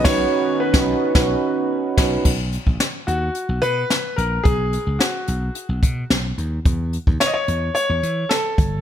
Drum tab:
CC |x-------------x-|x---------------|----------------|----------------|
HH |----------------|--x-x-x-x-x-x-x-|x-x-x-x-x-x-x-x-|x-x-x-x-x-x-x-x-|
SD |o----o--o-----o-|----o-------o---|----o-------o---|----o-------o---|
BD |o----o--o-----o-|o--o------------|o---------o-----|o--o----------o-|